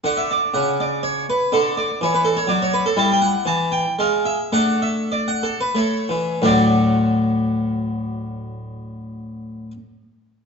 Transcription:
<<
  \new Staff \with { instrumentName = "Harpsichord" } { \time 3/4 \key d \major \tempo 4 = 107 << { fis''16 e''16 d''8 fis''8 d''8 cis''8 b'8 | a'8 d''8 cis''16 b'16 a'16 cis''16 d''16 cis''16 b'16 a'16 | a''16 g''16 fis''8 a''8 g''8 f''8 e''8 | fis''8 e''8 d''16 fis''16 a'16 b'16 cis''4 |
<d, a, fis a d' fis' d''>2.~ | <d, a, fis a d' fis' d''>2. | } \\ { d'2. | d'2. | e'2 r4 | d'2 r4 |
r2. | r2. | } >> }
  \new Staff \with { instrumentName = "Harpsichord" } { \clef bass \time 3/4 \key d \major d4 cis2 | d4 e4 fis4 | g4 e4 gis4 | a2 a8 e8 |
r2. | r2. | }
>>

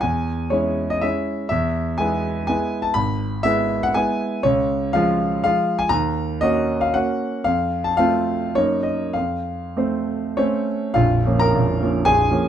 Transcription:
<<
  \new Staff \with { instrumentName = "Grand piano" } { \time 3/4 \key e \major \tempo 4 = 119 gis''4 cis''8. dis''16 e''4 | e''4 gis''4 gis''8. a''16 | b''4 e''8. fis''16 gis''4 | \key bes \minor des''4 f''4 f''8. aes''16 |
bes''4 ees''8. f''16 ges''4 | f''8. a''16 f''4 des''8 ees''8 | f''2 <des' des''>4 | <f' f''>8. <bes' bes''>4~ <bes' bes''>16 <aes' aes''>4 | }
  \new Staff \with { instrumentName = "Grand piano" } { \time 3/4 \key e \major e,4 <gis cis' e'>4 <gis cis' e'>4 | e,4 <gis b e'>4 <gis b e'>4 | gis,,4 <gis b e'>4 <gis b e'>4 | \key bes \minor des,4 <f aes f'>4 <f aes f'>4 |
ees,4 <bes des' ges'>4 <bes des' ges'>4 | f,4 <a c' f'>4 <ges, bes ees' bes'>4 | f,4 <a c' c''>4 <a c' c''>4 | <bes,,, bes,,>8 <f bes des'>8 <bes,,, bes,,>8 <f bes des'>8 <bes,,, bes,,>8 <f bes des'>8 | }
>>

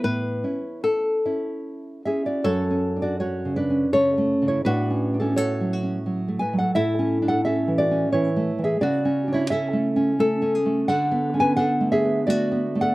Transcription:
<<
  \new Staff \with { instrumentName = "Nylon-string guitar" } { \time 3/4 \key a \major \tempo 4 = 86 b'4 a'4. r8 | \key fis \minor a'2 cis''4 | fis'4 a'8 fis'4. | e'2. |
fis'4 e'4 a'8 gis'8 | \key b \dorian fis'4 d'4 fis'4 | }
  \new Staff \with { instrumentName = "Nylon-string guitar" } { \time 3/4 \key a \major << { r2 r8 <gis' e''>16 <fis' d''>16 | \key fis \minor <fis' cis''>8. <fis' d''>16 <fis' cis''>8 <d' b'>8 <cis' a'>8. <e' cis''>16 | <d' b'>8. <cis' a'>16 <fis' cis''>4 r8 <b' gis''>16 <a' fis''>16 | <a' e''>8. <a' fis''>16 <a' e''>8 <fis' d''>8 <e' cis''>8. <gis' e''>16 |
<fis' d''>8. <e' cis''>16 <a' e''>4 r4 | \key b \dorian <a' fis''>8. <b' gis''>16 <a' fis''>8 <gis' e''>8 <fis' d''>8. <a' fis''>16 | } \\ { a,8 <cis' e'>4 <cis' e'>4 <cis' e'>8 | \tuplet 3/2 { fis,8 cis'8 d'8 cis'8 cis8 cis'8 cis8 a8 cis8 } | \tuplet 3/2 { a,8 cis'8 d'8 cis'8 fis8 cis'8 fis8 a8 fis8 } | \tuplet 3/2 { a,8 cis'8 d'8 cis'8 e8 cis'8 e8 a8 e8 } |
\tuplet 3/2 { cis8 cis'8 d'8 cis'8 a8 cis'8 a8 cis'8 a8 } | \tuplet 3/2 { d8 b8 cis'8 b8 a8 b8 a8 b8 a8 } | } >> }
>>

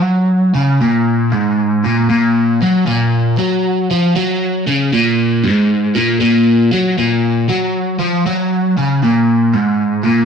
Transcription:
\new Staff \with { instrumentName = "Overdriven electric guitar" } { \clef bass \time 4/4 \key bes \minor \tempo 4 = 117 ges4 des8 bes,4 aes,4 bes,8 | bes,4 ges8 bes,4 ges4 f8 | ges4 des8 bes,4 aes,4 bes,8 | bes,4 ges8 bes,4 ges4 f8 |
ges4 des8 bes,4 aes,4 bes,8 | }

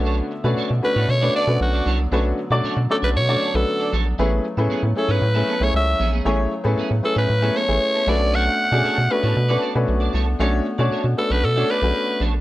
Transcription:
<<
  \new Staff \with { instrumentName = "Alto saxophone" } { \time 4/4 \key b \dorian \tempo 4 = 116 r4. b'8 cis''8 d''8 fis'8. r16 | r4. a'16 b'16 cis''8. a'8. r8 | r4. a'16 b'4 cis''16 e''8. r16 | r4. a'16 b'8. cis''4 d''8 |
fis''4. b'4 r4. | r4. a'16 b'16 a'8 b'4 r8 | }
  \new Staff \with { instrumentName = "Clean electric guitar" } { \time 4/4 \key b \dorian <d' a' cis''>8 r16 <d' a' d''>16 <d' a' cis''>8 r16 <d' a' cis''>16 r16 <d' a' d''>16 <d' a' d''>16 r8 <d' a' d''>16 <d' a' cis''>8 | <d' a' cis''>8 r16 <d' a' d''>16 <d' a' cis''>8 r16 <d' a' cis''>16 r16 <d' a' d''>16 <d' a' d''>16 r8 <d' a' d''>16 <d' a' cis''>8 | <b cis' gis'>8 r16 <b cis' a'>16 <b cis' gis'>8 r16 <b cis' gis'>16 r16 <b cis' a'>16 <b cis' a'>16 r8. <b cis' gis'>16 <b cis' gis'>16 | <b cis' gis'>8 r16 <b cis' a'>16 <b cis' gis'>8 r16 <b cis' gis'>16 r16 <b cis' a'>16 <b cis' a'>16 r8 <b cis' a'>16 <d' a' cis''>8 |
<d' a' cis''>8 r16 <d' a' d''>16 <d' a' cis''>8 r16 <d' a' cis''>16 r16 <d' a' d''>16 <d' a' d''>16 r8 <d' a' d''>16 <d' a' cis''>8 | <d' a' cis''>8 r16 <d' a' d''>16 <d' a' cis''>8 r16 <d' a' cis''>16 r16 <d' a' d''>16 <d' a' d''>16 r8. <d' a' cis''>8 | }
  \new Staff \with { instrumentName = "Grand piano" } { \time 4/4 \key b \dorian <a cis' d' fis' b'>8 r16 <a cis' d' fis' b'>8 r16 <a cis' d' fis' b'>8 r16 <a cis' d' fis' b'>16 r16 <a cis' d' fis' b'>8. r8 | <a cis' d' fis' b'>8 r16 <a cis' d' fis' d''>8 r16 <a cis' d' fis' d''>8 r16 <a cis' d' fis' d''>16 r16 <a cis' d' fis' b'>8. r8 | <a cis' e' gis' b'>8 r16 <a cis' e' gis' b'>8 r16 <a cis' e' gis' cis''>8 r16 <a cis' e' gis' b'>16 r16 <a cis' e' gis' cis''>8. r8 | <a cis' e' gis' cis''>8 r16 <a cis' e' gis' b'>8 r16 <a cis' e' gis' b'>8 r16 <a cis' e' gis' cis''>16 r16 <a cis' e' gis' b'>8. <a cis' d' fis' b'>8~ |
<a cis' d' fis' b'>8 r16 <a cis' d' fis' gis'>8 r16 <a cis' d' fis' b'>8 r16 <a cis' d' fis' b'>16 r16 <a cis' d' fis' b'>8. r8 | <a cis' d' fis' cis''>8 r16 <a cis' d' fis' cis''>8 r16 <a cis' d' fis' b'>8 r16 <a cis' d' fis' cis''>16 r16 <a cis' d' fis' b'>8. r8 | }
  \new Staff \with { instrumentName = "Woodwind section" } { \clef bass \time 4/4 \key b \dorian << { <d b>1~ | <d b>1 | <cis a>1~ | <cis a>2.~ <cis a>8 <d b>8~ |
<d b>1~ | <d b>1 | } \\ { a2.~ a8 fis8~ | fis1~ | fis1~ | fis2.~ fis8 r8 |
r1 | r1 | } >> }
  \new Staff \with { instrumentName = "Analog synth bass" } { \clef bass \time 4/4 \key b \dorian b,,8 r16 b,16 b,16 b,16 r16 a,16 b,8 r16 b,16 b,,8 c,8 | b,,8 r16 b,16 b,16 b,16 r16 b,,16 b,8 r16 b,,16 r8 ais,,8 | a,,8 r16 a,16 a,16 a,16 r16 gis,16 a,8 r16 b,,16 cis,8 ais,,8 | a,,8 r16 a,16 a,16 a,16 r16 a,16 a,8 r16 a,,16 r8 b,,8~ |
b,,8 r16 b,16 b,16 b,16 r16 a,16 b,8 r16 b,16 b,,8 c,8 | b,,8 r16 b,16 b,16 b,16 r16 b,,16 b,8 r16 b,,16 r8 ais,,8 | }
>>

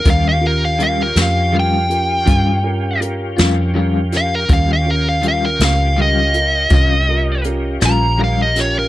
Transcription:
<<
  \new Staff \with { instrumentName = "Lead electric guitar" } { \time 12/8 \key ees \major \tempo 4. = 54 f''16 f''16 bes'16 f''16 f''16 bes'16 f''8 g''2 r4. f''16 bes'16 | f''16 f''16 bes'16 f''16 f''16 bes'16 f''8 ees''2 r8 bes''8 f''16 ees''16 des''16 bes'16 | }
  \new Staff \with { instrumentName = "Upright piano" } { \time 12/8 \key ees \major <des' f' g' bes'>8 <des' f' g' bes'>8 <des' f' g' bes'>8 <des' f' g' bes'>8 <des' f' g' bes'>8 <des' f' g' bes'>8 <des' f' g' bes'>8 <des' f' g' bes'>8 <des' f' g' bes'>8 <des' f' g' bes'>8 <des' f' g' bes'>8 <des' f' g' bes'>8 | <des' f' g' bes'>8 <des' f' g' bes'>8 <des' f' g' bes'>8 <des' f' g' bes'>8 <des' f' g' bes'>8 <des' f' g' bes'>8 <des' f' g' bes'>8 <des' f' g' bes'>8 <des' f' g' bes'>8 <des' f' g' bes'>8 <des' f' g' bes'>8 <des' f' g' bes'>8 | }
  \new Staff \with { instrumentName = "Tonewheel organ" } { \time 12/8 \key ees \major <des' f' g'>1. | <des' f' g'>1. | }
  \new Staff \with { instrumentName = "Clean electric guitar" } { \time 12/8 \key ees \major <ees g des' f'>8 r8 <ees g des' f'>8 r8 <ees g des' f'>8 r8 <ees g des' f'>8 r4 <g des' f'>8 <ees g des' f'>8 r8 | <ees g des' f'>8 r8 <ees g des' f'>8 r8 <ees g des' f'>8 r8 <ees g des' f'>8 r4 <g des' f'>8 <ees g des' f'>8 r8 | }
  \new Staff \with { instrumentName = "Fingered electric bass" } { \clef bass \time 12/8 \key ees \major ees,4. f,4. g,4. f,4. | ees,4. des,4. c,4. bes,,4. | }
  \new DrumStaff \with { instrumentName = "Drums" } \drummode { \time 12/8 <hh bd>4 hh8 <hh sn>4 hh8 <hh bd>4 hh8 <hh sn>4 <hh sn>8 | <hh bd>4 hh8 <hh sn>4 hh8 <hh bd>4 hh8 <hh sn>4 <hh sn>8 | }
>>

